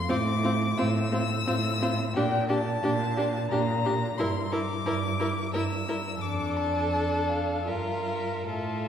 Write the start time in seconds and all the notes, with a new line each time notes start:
Already playing: C6
0.09 A2 C4 F4 D6
0.44 C4 F4
0.78 A2 C4 F4 E6
1.12 C4 F4
1.47 A2 C4 F4
1.82 C4 F4
2.16 A#2 D4 G4 G5
2.49 D4 G4 A5
2.83 A#2 D4 G4
3.17 D4 G4
3.51 A#2 D4 G4 A#5
3.86 D4 G4
4.18 G2 E4 A#4 C6
4.52 E4 A#4 D6
4.86 G2 E4 A#4
5.20 E4 A#4
5.54 G2 E4 A#4 E6
5.88 E4 A#4
6.21 F2 D4 A4 D6
6.56 A5
7.29 F5
7.67 G2 F4 A#4 E5
8.47 A2 F4 A4 E5